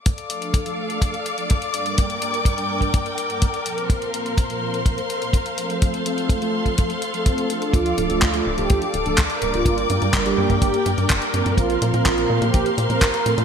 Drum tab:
HH |xxxxxx-xxxxxxxxx|xxxxxx-xxxxxxxxx|xxxxxx-xxxxxxxxx|xxxxxx-xxxxxxxxx|
CP |----------------|----------------|----------------|----------------|
BD |o---o---o---o---|o---o--oo---o---|o---o---o---o---|o---o--oo---o---|

HH |xxxxxx-xxxxxxxxx|xxxxxx-xxxxxxxxx|xxxxxx-xxxxxxxxx|
CP |----x-------x---|----x-------x---|----x-------x---|
BD |o---o---o---o---|o---o--oo---o---|o---o---o---o---|